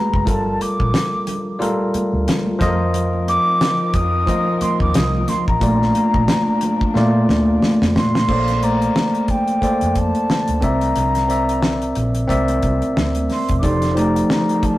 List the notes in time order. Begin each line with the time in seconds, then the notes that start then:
Already playing: G#3 F#4 G#4 B4 A#5
0.14 F#1, kick
0.25 G1 G3 F4 A4 A#4 A5, kick, closed hi-hat, low conga
0.60 D6, closed hi-hat, high conga
0.80 A#1, kick
0.94 snare, closed hi-hat
1.13 muted conga
1.27 closed hi-hat, low conga
1.59 G3 F4 A4 A#4, closed hi-hat, muted conga, high conga
1.94 muted fingered electric bass stroke, closed hi-hat, high conga
2.13 D2
2.27 snare, closed hi-hat, muted conga, high conga
2.47 muted conga, high conga
2.59 F2 F3 F4 A4 D#5, kick, snare, closed hi-hat, high conga, low conga
2.67 A#4
2.94 F3 C4 D#4 A#4, closed hi-hat, low conga
3.13 muted conga
3.27 D6, closed hi-hat, high conga
3.61 snare, closed hi-hat, muted conga
3.94 F2 D#6, kick, closed hi-hat, low conga
4.27 F3 F4 A#4 D#5, kick, closed hi-hat, muted conga, high conga
4.61 C6, muted fingered electric bass stroke, closed hi-hat, high conga
4.80 D#2 D6, kick
4.94 C2 D#6, snare, closed hi-hat, muted conga, high conga
5.14 muted conga, high conga
5.28 C6, snare, closed hi-hat, high conga, low conga
5.48 A1 A#5, kick
5.60 A#1 A#2 F3 A3 A#3 D4 F4 D5, kick, closed hi-hat, muted conga, low conga
5.82 snare
5.95 closed hi-hat, high conga
6.14 A#1, kick
6.28 snare, closed hi-hat
6.48 muted conga
6.61 closed hi-hat, low conga
6.81 kick
6.94 A#2 A3 A#3 F4 D5, snare, muted conga, high conga
7.29 D2, snare, high conga
7.62 muted fingered electric bass stroke, snare, high conga
7.81 F2, snare, high conga
7.96 A#2 C6, snare, high conga, low conga
8.15 snare
8.28 A#1 A#3 A4 C5 D5, kick, crash, low conga
8.48 snare, closed hi-hat
8.61 A3 A#3 C5 D5 A#5, closed hi-hat
8.82 closed hi-hat
8.96 snare
9.15 closed hi-hat
9.28 G5, kick, closed hi-hat, low conga
9.48 closed hi-hat
9.61 A#3 A4 C5 D5, muted fingered electric bass stroke, kick, closed hi-hat, high conga
9.81 F2, closed hi-hat, muted conga
9.95 A5, kick, closed hi-hat, high conga
10.15 closed hi-hat
10.30 snare, high conga
10.48 D2, closed hi-hat, muted conga, high conga
10.61 C2 C4 A#4 D5 E5 A#5, kick, closed hi-hat, high conga
10.81 closed hi-hat
10.96 C2, closed hi-hat, low conga
11.15 snare, closed hi-hat
11.28 C4 A#4 D5 E5, closed hi-hat
11.49 closed hi-hat
11.63 snare
11.82 closed hi-hat
11.95 A#1, closed hi-hat, low conga
12.15 closed hi-hat
12.27 C2 C4 A#4 D5 E5, kick, closed hi-hat, muted conga, high conga
12.48 closed hi-hat, muted conga
12.63 C2, kick, closed hi-hat, high conga
12.82 closed hi-hat
12.97 D2, snare, high conga
13.15 closed hi-hat, muted conga, high conga
13.29 C6, snare, open hi-hat, high conga
13.49 E1, kick, closed hi-hat
13.59 F3 D#4 D6
13.63 F1 D#3 F3 A3 G4 A4 D5 C6, kick, closed hi-hat, muted conga, low conga
13.82 snare, closed hi-hat
13.95 F3 A3 D#4 G4 D5, closed hi-hat
13.99 A#5
14.16 closed hi-hat
14.30 A#5, snare, muted conga
14.49 closed hi-hat, muted conga
14.63 A5, kick, closed hi-hat, low conga